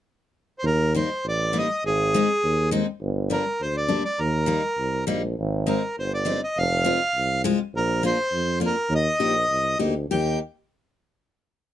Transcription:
0.59 0.65 C5 medium
0.63 1.03 D#2 loud
0.63 0.94 A#4 medium
0.94 1.08 G3 soft
0.94 1.09 A#3 medium
0.94 1.09 D#4 medium
0.94 1.26 C5 medium
1.24 1.63 A1 medium
1.28 1.57 D5 medium
1.53 1.67 G3 soft
1.53 1.67 A#3 soft
1.53 1.67 D#4 soft
1.58 1.84 D#5 medium
1.84 2.22 G#1 medium
1.84 2.70 G#4 medium
2.14 2.27 G#3 medium
2.14 2.27 C4 soft
2.14 2.28 D#4 medium
2.43 2.81 D#2 medium
2.71 2.85 G#3 medium
2.71 2.85 C4 soft
2.71 2.85 D#4 medium
3.01 3.39 G1 medium
3.30 3.44 G3 medium
3.30 3.44 A#3 medium
3.30 3.44 D4 medium
3.30 3.62 A#4 medium
3.61 3.99 D2 medium
3.61 3.76 C5 medium
3.77 4.03 D5 medium
3.89 4.02 G3 medium
3.89 4.02 A#3 soft
3.89 4.02 D4 medium
4.05 4.20 D5 medium
4.19 4.58 D#2 medium
4.19 5.05 A#4 medium
4.46 4.61 G3 soft
4.46 4.61 A#3 medium
4.46 4.62 D#4 medium
4.78 5.06 C2 medium
5.07 5.35 A#1 medium
5.07 5.21 G3 medium
5.07 5.21 A#3 medium
5.07 5.21 D#4 medium
5.39 5.77 G#1 medium
5.66 5.81 G#3 medium
5.66 5.81 C4 soft
5.66 5.81 D#4 medium
5.66 5.96 A#4 medium
5.99 6.37 G1 medium
5.99 6.12 C5 medium
6.14 6.41 D5 medium
6.25 6.40 G#3 soft
6.25 6.40 C4 soft
6.25 6.40 D#4 medium
6.44 6.58 D#5 medium
6.57 6.95 F1 loud
6.57 7.42 F5 loud
6.84 6.99 G#3 medium
6.84 6.99 C4 soft
6.84 6.99 F4 medium
7.15 7.54 C2 medium
7.44 7.58 G#3 medium
7.44 7.58 C4 soft
7.44 7.58 F4 medium
7.74 8.12 A#1 medium
7.74 8.03 A#4 medium
8.03 8.17 A#3 medium
8.03 8.17 D4 soft
8.03 8.17 F4 medium
8.03 8.59 C5 medium
8.33 8.71 F2 medium
8.60 8.74 A#3 soft
8.60 8.74 D4 soft
8.60 8.75 F4 medium
8.66 8.94 A#4 medium
8.90 9.09 D#2 loud
8.95 9.78 D#5 loud
9.20 9.46 A#1 medium
9.20 9.33 A#3 soft
9.20 9.34 D#4 medium
9.20 9.34 G4 medium
9.48 9.76 C2 medium
9.79 10.07 D2 medium
9.79 9.93 A#3 medium
9.79 9.93 D#4 medium
9.79 9.93 G4 medium
10.09 10.38 D#2 medium
10.09 10.39 A#3 soft
10.09 10.39 D#4 soft
10.09 10.39 G4 medium
10.09 10.39 G5 medium

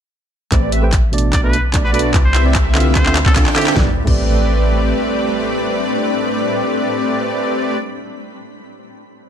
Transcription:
0.51 1.35 A1 loud
0.51 0.60 A3 medium
0.51 2.13 A3 medium
0.51 0.70 A3 medium
0.51 0.70 C4 medium
0.51 0.60 G4 medium
0.51 0.70 G4 medium
0.51 0.60 B4 medium
0.51 0.70 B4 medium
0.51 0.60 C5 medium
0.51 0.70 D5 loud
0.51 0.70 D5 medium
0.51 0.61 D5 medium
0.51 kick medium
0.51 clap soft
0.51 closed hi-hat medium
0.51 riser medium
0.72 0.85 A3 medium
0.72 0.85 C4 medium
0.72 0.85 G4 medium
0.72 0.85 B4 medium
0.72 0.85 E5 medium
0.72 closed hi-hat medium
0.82 0.90 A3 medium
0.82 0.90 G4 medium
0.82 0.90 B4 medium
0.82 0.90 C5 medium
0.82 0.91 G5 loud
0.93 kick loud
0.93 clap soft
0.93 closed hi-hat medium
1.12 1.41 B2 medium
1.12 1.41 A3 medium
1.12 1.41 D4 medium
1.12 1.42 D5 loud
1.12 closed hi-hat soft
1.18 closed hi-hat medium
1.33 2.13 B1 loud
1.33 2.94 B4 medium
1.33 1.42 D5 medium
1.33 kick medium
1.33 clap medium
1.33 closed hi-hat medium
1.43 1.55 B2 medium
1.43 1.55 A3 medium
1.43 1.56 D4 medium
1.43 1.62 B4 medium
1.43 1.56 B4 loud
1.53 closed hi-hat medium
1.73 1.81 B2 medium
1.73 1.82 A3 medium
1.73 1.82 D4 medium
1.73 1.82 D5 medium
1.73 kick loud
1.73 clap medium
1.73 closed hi-hat medium
1.84 2.13 A3 medium
1.84 2.13 D4 medium
1.84 2.13 F#4 medium
1.84 1.90 B4 medium
1.84 2.13 B4 medium
1.84 2.13 D5 loud
1.84 2.13 D5 medium
1.93 2.11 B2 medium
1.93 2.12 A3 medium
1.93 2.12 D4 medium
1.93 2.01 B4 medium
1.93 2.12 B4 loud
1.93 closed hi-hat medium
1.99 closed hi-hat medium
2.13 2.97 C2 loud
2.13 2.22 C3 medium
2.13 2.22 C4 medium
2.13 2.22 E4 medium
2.13 2.23 B4 medium
2.13 3.75 E5 medium
2.13 kick loud
2.13 clap medium
2.13 closed hi-hat medium
2.25 2.43 C5 medium
2.34 2.94 C4 medium
2.34 2.94 E4 medium
2.34 2.94 G4 medium
2.34 2.94 B4 medium
2.34 2.94 E5 medium
2.34 clap medium
2.34 closed hi-hat medium
2.44 2.52 C3 medium
2.44 2.52 C4 medium
2.44 2.53 E4 medium
2.44 2.53 D5 loud
2.55 kick loud
2.55 clap medium
2.55 closed hi-hat medium
2.74 3.03 D3 medium
2.74 3.03 C4 medium
2.74 3.03 F4 medium
2.74 3.04 F5 loud
2.74 clap medium
2.74 closed hi-hat soft
2.80 closed hi-hat medium
2.95 3.25 D2 loud
2.95 3.14 C5 medium
2.95 kick medium
2.95 clap medium
2.95 closed hi-hat medium
3.05 3.17 D3 medium
3.05 3.18 C4 medium
3.05 3.18 F4 medium
3.05 3.18 E5 loud
3.05 clap medium
3.16 clap loud
3.16 closed hi-hat medium
3.26 3.45 C2 loud
3.26 3.32 A4 medium
3.26 clap medium
3.35 3.43 D3 medium
3.35 3.44 C4 medium
3.35 3.74 D4 loud
3.35 3.74 F4 medium
3.35 3.44 F4 medium
3.35 3.43 A4 medium
3.35 3.74 A4 medium
3.35 3.74 C5 medium
3.35 3.44 F5 loud
3.35 3.74 G5 loud
3.35 kick loud
3.35 clap loud
3.35 closed hi-hat medium
3.46 clap medium
3.55 3.74 D3 loud
3.55 3.74 C4 medium
3.55 3.74 F4 medium
3.55 3.63 G4 medium
3.55 3.75 E5 loud
3.55 clap loud
3.55 closed hi-hat soft
3.61 closed hi-hat medium
3.67 3.73 G4 medium
3.67 clap loud
3.73 3.88 A1 loud
3.73 7.67 A2 medium
3.73 7.66 G3 medium
3.73 3.86 A3 medium
3.73 3.88 A3 medium
3.73 3.88 C4 medium
3.73 7.66 C4 medium
3.73 7.66 D4 medium
3.73 3.87 G4 medium
3.73 3.88 G4 medium
3.73 3.88 B4 medium
3.73 3.88 D5 medium
3.73 3.88 D5 loud
3.73 7.66 B5 medium
3.73 kick loud
3.73 snare medium
3.73 impact medium
3.78 3.89 C4 medium
3.78 3.90 D5 loud
4.04 4.94 A1 loud
4.04 7.94 A3 medium
4.04 7.77 A3 medium
4.04 7.77 C4 medium
4.04 7.96 G4 medium
4.04 7.77 G4 medium
4.04 7.97 B4 medium
4.04 7.77 B4 medium
4.04 7.77 D5 medium
4.04 kick loud
4.04 crash medium
4.09 7.99 C4 medium
4.09 8.00 D5 loud

